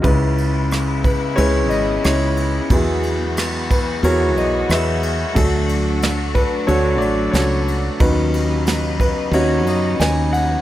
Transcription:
0.02 C#2 C#3 G#3 B3 C#4 E4 B4, kick, ride
0.38 ride
0.71 cross-stick, ride
1.04 B4, kick, ride
1.36 C#2 G#3 C#4 E4 G#4 B4 C#5, ride
1.69 G#1 D#5, ride
2.04 C#2 E4 G#4 C#5, cross-stick, ride
2.37 ride
2.70 E2 E3 F#3 B3 E4 F#4 G#4, kick, ride
3.03 ride
3.37 cross-stick, ride
3.71 B4, kick, ride
4.03 E2 F#3 B3 E4 F#4 G#4 A#4 C#5, ride
4.36 B1 D#5, ride
4.69 E2 G#4 B4 E5, cross-stick, ride
5.03 ride
5.34 D2 F#3 A3 D4 A4, kick, ride
5.69 ride
6.02 snare, ride
6.35 B4, kick, ride
6.67 D2 F#3 A3 D4 F#4 A4 C#5, ride
6.98 A1 D5, ride
7.32 C#2 F#4 A4 C#5, snare, ride
7.68 ride
7.99 D#2 C#3 D#3 F#3 B3 C#4 D#4 B4, kick, ride
8.34 ride
8.67 snare, ride
9.00 B4, kick, ride
9.31 D#2 F#3 C#4 D#4 F#4 C#5, ride
9.65 F#2 D#5, ride
10.00 D#2 G#5, snare, ride
10.33 F#5, ride

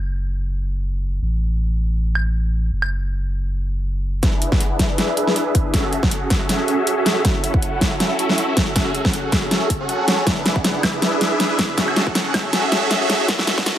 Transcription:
Already playing: F#1
1.21 A1
2.15 high woodblock
2.72 F#1
2.82 high woodblock
4.23 D4 E4 G#4 B4 E5, kick, snare, closed hi-hat
4.42 closed hi-hat
4.52 D4 G#4 B4, kick, snare
4.61 closed hi-hat
4.79 D4 E4 G#4 B4 E5, kick, snare, closed hi-hat
4.98 snare, closed hi-hat
5.17 D4 E4 G#4 B4 E5, closed hi-hat
5.27 snare
5.36 closed hi-hat
5.46 D4 E4 G#4 B4 E5
5.55 kick, closed hi-hat
5.74 C#4 F#4 G#4 A4 E5, kick, snare, closed hi-hat
5.93 closed hi-hat
6.03 C#4 F#4 G#4 A4 F#5, kick, snare
6.11 closed hi-hat
6.30 C#4 F#4 E5, kick, snare, closed hi-hat
6.49 snare, closed hi-hat
6.68 C#4 F#4 G#4 A4 E5, closed hi-hat
6.87 closed hi-hat
6.97 C#4 F#4 G#4 A4 E5
7.06 snare, closed hi-hat
7.25 E4 F#4 E5, kick, snare, closed hi-hat
7.44 closed hi-hat
7.54 C#4 E4 F#4 A4 F#5, kick
7.62 closed hi-hat
7.81 C#4 E4 E5, kick, snare, closed hi-hat
8.00 snare, closed hi-hat
8.19 C#4 E4 F#4 A4 E5, closed hi-hat
8.29 snare
8.38 closed hi-hat
8.48 C#4 E4 F#4 A4 E5
8.57 kick, snare, closed hi-hat
8.76 C#4 F#4 G#4 A4 E5, kick, snare, closed hi-hat
8.95 closed hi-hat
9.05 C#4 F#4 G#4 A4 F#5, kick, snare
9.13 closed hi-hat
9.32 C#4 G#4 A4 E5, kick, snare, closed hi-hat
9.51 snare, closed hi-hat
9.70 kick, closed hi-hat
9.80 C#4 F#4 G#4 A4 F#5
9.89 closed hi-hat
10.08 C#4 F#4 G#4 A4 C#5, snare, closed hi-hat
10.26 D4 E4 G#4 B4 E5, kick, snare, closed hi-hat
10.46 snare, closed hi-hat
10.56 D4 E4 G#4 B4 F#5, kick
10.64 snare, closed hi-hat
10.83 D4 E4 G#4 B4 E5, kick, snare, closed hi-hat, high woodblock
11.02 snare, closed hi-hat
11.21 D4 E4 G#4 B4 E5, snare, closed hi-hat
11.40 snare, closed hi-hat
11.50 D4 E4 G#4 B4 E5
11.59 kick, snare, closed hi-hat
11.78 C#4 F#4 G#4 A4 E5, kick, snare, closed hi-hat
11.88 high woodblock
11.96 snare, closed hi-hat
12.07 C#4 G#4 A4, kick
12.15 snare, closed hi-hat
12.34 F#4 G#4 A4 E5, kick, snare, closed hi-hat, high woodblock
12.53 snare, closed hi-hat
12.72 C#4 F#4 G#4 A4 E5, snare, closed hi-hat
12.91 snare, closed hi-hat
13.01 C#4 F#4 G#4 A4 E5
13.10 snare, closed hi-hat
13.28 kick, snare, closed hi-hat
13.39 snare
13.47 snare, closed hi-hat
13.58 C#4 E4 F#4 A4 F#5, kick, snare
13.66 snare, closed hi-hat

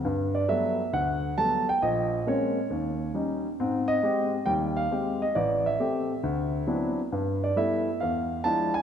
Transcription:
0.05 G2
0.35 D5
0.48 F#3 G3 A3 B3 E5
0.93 D2 F#5
1.38 F#3 G3 A3 B3 A5
1.69 G5
1.82 A#1 D#5
2.27 G#3 A#3 C4 C#4 C#5
2.70 D#2
3.14 G3 C#4 D#4
3.60 G#2 C4
3.88 D#5
4.03 G#3 C4 G4
4.46 D#2 G3 G5
4.76 F5
4.91 G#3 C4 G4
5.22 D#5
5.35 A1 D5
5.66 E5
5.79 A3 C4 G4
6.23 D2
6.67 F#3 B3 C4 D4 E4
7.12 G2
7.44 D5
7.56 G3 A3 B3 E4 E5
8.00 E2 F5
8.44 F3 G#3 D4 E4 A5
8.74 G#5

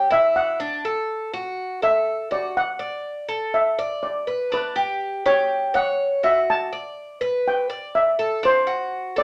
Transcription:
Already playing: G4
0.11 E4 E5
0.36 F#5
0.60 D4
0.85 A4
1.34 F#4
1.82 A4 E5
2.31 F#4 D5
2.57 F#5
2.79 D5
3.29 A4
3.54 E5
3.79 D5
4.03 D5
4.27 B4
4.52 D4 B4
4.76 G4
5.26 G4 C#5
5.74 C#5 F#5
6.23 F#4 E5
6.50 A5
6.73 D5
7.21 B4
7.48 G5
7.70 D5
7.95 E5
8.19 A4
8.43 D4 C5
8.67 F#4
9.16 A4 D5

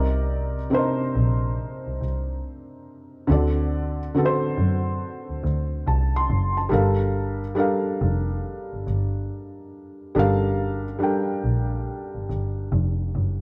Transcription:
Already playing: C2 C3 C4 D#4 A#4 D5
0.70 C3 C4 D4 A#4
0.74 C5
0.79 D#4
1.15 A#1
1.86 C2
2.01 C2
3.27 D2 D3 C4 F#4 A4
3.32 D5
4.14 D3 C4 F#4 A4
4.19 B4
4.25 C5
4.58 F#2
5.29 D2
5.44 D2
5.87 C2 A5
6.16 C6
6.30 F#1
6.57 A5
6.69 G1 G3 D4 A4 A#4
6.74 F5
7.55 G3 D4 A4 A#4
7.60 F5
8.01 F1
8.73 G1
8.87 G1
10.15 G1 G3 D4 A4 A#4
10.19 F5
10.99 G3 D4 A4 A#4
11.03 G5
11.44 A#1
12.15 G1
12.30 G1
12.72 F1
13.15 F#1

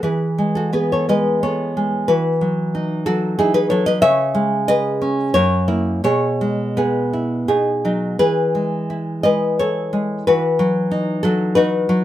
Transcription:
0.03 E3 G#4 B4
0.38 G#3
0.55 F#4 A4
0.73 B3 G#4 B4
0.92 A4 C#5
1.09 G#3 B4 D#5
1.43 B3 A4 C#5
1.77 G#3
2.08 E3 F#4 B4
2.41 F#3
2.75 D#4
3.06 F#3 F#4 A4
3.39 D#4 E4 G#4
3.54 G#4 B4
3.70 F#3 A4 C#5
3.86 B4 D#5
4.02 C#3 C#5 E5
4.35 G#3
4.68 G#4 B4 D#5
5.02 C#4
5.34 F#2 A#4 C#5
5.68 A#3 E4
6.04 B2 G#4 C#5
6.41 G#3
6.77 B3 G#4 B4
7.13 E4
7.48 B2 D#4 G#4
7.85 F#3 D#4
8.19 E3 G#4 B4
8.55 G#3
8.90 E4
9.23 G#3 B4 D#5
9.59 E4 A4 C#5
9.93 G#3
10.27 E3 F#4 B4
10.59 F#3
10.91 D#4
11.23 F#3 F#4 A4
11.55 D#4 F#4 B4
11.89 F#3

